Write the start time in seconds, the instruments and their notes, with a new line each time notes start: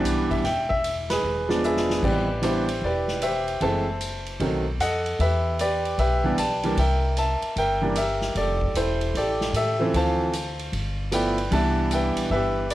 Already playing: grand piano E3 G3 B3 D4 E4
0.04 upright bass B1, hi-hat pedal, ride
0.31 grand piano E5, kick, ride
0.44 upright bass E1, grand piano E5 G5, kick, snare, ride
0.69 grand piano E5, kick
0.84 hi-hat pedal, ride
1.10 grand piano G#4 B4, snare, ride
1.23 upright bass E1
1.48 grand piano F3 G#3 B3 D4, snare
1.64 grand piano G#4 B4 E5, hi-hat pedal
1.76 snare
1.90 snare
2.02 upright bass A1, grand piano E3 G3 B3 C4 G4 B4 D5, kick, crash
2.42 grand piano E3 G3 B3 D4 E4 G4 C5, hi-hat pedal, ride
2.68 ride
2.82 upright bass E1, grand piano G4 B4 D5, kick
3.08 snare
3.22 grand piano G4 C5 E5, hi-hat pedal, ride
3.48 ride
3.61 upright bass F#1, grand piano E3 G#3 A3 C4 C5 E5 A5, kick, ride
4.01 hi-hat pedal, ride
4.26 ride
4.40 upright bass B1, grand piano D#3 F#3 A3 C4, kick, ride
4.78 upright bass F2, grand piano A4 D#5 F#5, hi-hat pedal, ride
5.06 ride
5.19 upright bass E2, grand piano G4 B4 E5, kick, ride
5.59 grand piano G4 B4 D5, hi-hat pedal, ride
5.85 ride
5.98 upright bass B1, grand piano G4 B4 E5, kick, ride
6.24 grand piano E3 G3 B3 D4
6.38 upright bass B1, grand piano D5 A5, hi-hat pedal, ride
6.63 grand piano E3 G3 A#3 D4, ride
6.77 upright bass C2, grand piano A#4 E5 G5, kick, ride
7.17 grand piano E5 A5, hi-hat pedal, ride
7.42 muted upright bass stroke, ride
7.56 upright bass G1, grand piano A#4 E5 G5, kick, ride
7.81 grand piano E3 G3 A#3 D4
7.96 grand piano G4 A#4 E5, hi-hat pedal, ride
8.21 snare
8.35 upright bass F1, grand piano G4 A4 D5, kick, ride
8.61 kick
8.74 upright bass E1, grand piano E4 A4 C5, hi-hat pedal, ride
9.01 ride
9.15 upright bass A1, grand piano G4 A4 D5, kick, ride
9.41 snare
9.53 upright bass A2, grand piano G4 E5, hi-hat pedal, ride
9.57 grand piano A4
9.79 grand piano E3 F3 A3 C4
9.94 upright bass D2, grand piano C5 F5 A5, kick, ride
10.33 hi-hat pedal, ride
10.59 ride
10.72 upright bass G1, kick, ride
11.12 grand piano F3 A3 B3 E4 B4 D5 G5, hi-hat pedal, ride
11.38 ride
11.51 upright bass C2, grand piano E3 G3 B3 D4 D5 E5 A5, kick, ride
11.91 grand piano B4 E5 G5, hi-hat pedal, ride
12.16 upright bass B1, ride
12.30 upright bass G1, grand piano G4 B4 E5, kick
12.70 grand piano D5, hi-hat pedal, ride